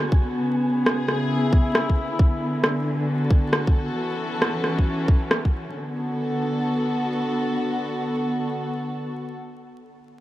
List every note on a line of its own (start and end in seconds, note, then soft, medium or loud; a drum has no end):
0.00 0.42 D3 medium
0.00 4.70 B3 medium
0.00 0.99 F#4 medium
0.00 0.41 A4 medium
0.00 5.76 G#5 medium
0.12 kick loud
0.42 2.20 C#3 medium
0.73 2.19 G#4 medium
0.86 cross-stick medium
1.08 cross-stick medium
1.18 2.92 E4 medium
1.53 kick loud
1.75 cross-stick medium
1.90 kick medium
2.19 3.97 D3 medium
2.19 kick loud
2.64 cross-stick medium
3.02 5.75 F#4 medium
3.02 5.75 A4 medium
3.31 kick medium
3.53 cross-stick medium
3.67 kick medium
3.97 5.75 E3 medium
4.13 5.75 C#4 medium
4.42 cross-stick medium
4.64 cross-stick soft
4.79 kick medium
5.08 kick loud
5.31 cross-stick medium
5.45 kick medium
5.75 9.14 D3 medium
5.83 9.22 B3 medium
5.91 9.30 F#4 medium
5.96 9.35 A4 medium